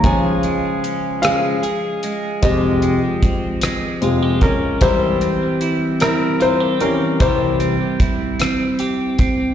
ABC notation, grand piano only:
X:1
M:6/8
L:1/8
Q:3/8=50
K:Cphr
V:1 name="Grand piano"
[da]3 [Af]3 | [Ge]4 z [DB] | [=Ec]3 [EB] [Ec] [DB] | [=Ec]4 z2 |]
V:2 name="Grand piano" clef=bass
[D,F,A,]3 [D,F,A,] z2 | [F,,C,A,] z3 [F,,C,A,] z | [=E,G,C]4- [E,G,C] [E,G,] | [C,=E,G,] z4 z |]